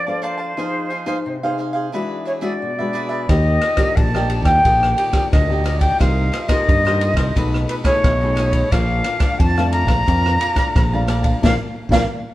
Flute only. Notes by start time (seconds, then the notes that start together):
Already playing: D5
0.23 C5
2.26 C#5
2.41 D5
3.29 D#5
3.96 A5
4.45 G5
5.32 D#5
5.80 G5
6.00 F5
6.48 D#5
7.69 B4
7.84 C#5
8.72 F5
9.39 A5
9.72 A#5
11.43 F5
11.92 F5